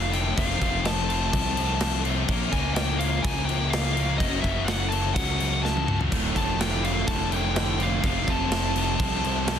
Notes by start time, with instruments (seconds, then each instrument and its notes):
Already playing: fingered electric bass F1, distorted electric guitar D2 A2 D3 A3 F4, lead electric guitar F5
0.12 distorted electric guitar D2 A2 D3 A3 F4, lead electric guitar G5, crash
0.16 distorted electric guitar D2
0.37 fingered electric bass F1, distorted electric guitar F2 C3 F3 A3 C4 F4, lead electric guitar F5, kick, crash
0.62 fingered electric bass F1, distorted electric guitar F2 C3 F3, kick, crash
0.85 distorted electric guitar F2 C3 F3, lead electric guitar A5, snare, crash
1.09 distorted electric guitar F2 C3 F3, lead electric guitar A5, crash
1.33 fingered electric bass C2, distorted electric guitar F2 C3 F3, kick, crash
1.57 distorted electric guitar F2 C3 F3, crash
1.80 distorted electric guitar F2 C3 F3, snare, crash
2.04 distorted electric guitar F2 C3 F3 A3 C4 F4, crash
2.08 distorted electric guitar F2
2.27 fingered electric bass A#1, distorted electric guitar A#2 F3 A#3 C#4 F4 A#4, kick, crash
2.52 fingered electric bass C#2, distorted electric guitar A#2 F3 A#3, lead electric guitar G#5, kick, crash
2.74 distorted electric guitar A#2 F3 A#3, lead electric guitar G5, snare, crash
2.99 distorted electric guitar A#2 F3 A#3, lead electric guitar F5, crash
3.22 fingered electric bass C#2, distorted electric guitar A#2 F3 A#3, lead electric guitar G#5, kick, crash
3.45 distorted electric guitar A#2 F3 A#3, lead electric guitar G5, crash
3.70 distorted electric guitar A#2 F3 A#3, lead electric guitar F5, snare, crash
3.93 distorted electric guitar A#2 F3 A#3 C#4 F4 A#4, lead electric guitar F5, crash
3.98 distorted electric guitar A#2 F3
4.17 fingered electric bass F#1, distorted electric guitar F#2 C#3 F#3 A3 C#4 F#4, lead electric guitar D#5, kick, crash
4.41 fingered electric bass F#1, distorted electric guitar F#2 C#3 F#3, lead electric guitar E5, kick, crash
4.65 distorted electric guitar F#2 C#3, lead electric guitar F#5, snare, crash
4.69 distorted electric guitar F#3
4.89 distorted electric guitar F#2 C#3 F#3, lead electric guitar A5, crash
5.14 fingered electric bass C#2, distorted electric guitar F#2 C#3 F#3, lead electric guitar F#5, kick, crash
5.39 distorted electric guitar F#2 C#3 F#3, crash
5.63 distorted electric guitar F#2 C#3 F#3, lead electric guitar A5, snare
5.77 high tom
5.87 distorted electric guitar F#2 C#3 F#3 A3 C#4 F#4, mid tom
6.01 floor tom
6.10 fingered electric bass D1, distorted electric guitar D2 A2 D3 A3 F4, kick, splash, crash
6.35 fingered electric bass F1, distorted electric guitar D2 A2 D3, lead electric guitar A5, kick, crash
6.60 distorted electric guitar D2 A2 D3, lead electric guitar G5, snare, crash
6.84 distorted electric guitar D2 A2 D3, lead electric guitar F5, crash
7.07 fingered electric bass F1, distorted electric guitar D2 A2 D3, lead electric guitar A5, kick, crash
7.30 distorted electric guitar D2 A2 D3, lead electric guitar G5, crash
7.55 distorted electric guitar D2 A2 D3, snare, crash
7.78 distorted electric guitar D2 A2 D3 A3 F4, crash
7.83 lead electric guitar F5
8.02 fingered electric bass F1, distorted electric guitar F2 C3 F3 A3 C4, kick, crash
8.06 distorted electric guitar F4, lead electric guitar F5
8.27 fingered electric bass F1, distorted electric guitar F2 C3 F3, lead electric guitar A5, kick, crash
8.51 distorted electric guitar F2 C3 F3, snare, crash
8.75 distorted electric guitar F2 C3 F3, crash
8.99 fingered electric bass C2, distorted electric guitar F2 C3 F3, kick, crash
9.23 distorted electric guitar F2 C3 F3, crash
9.47 distorted electric guitar F2 C3 F3, snare, crash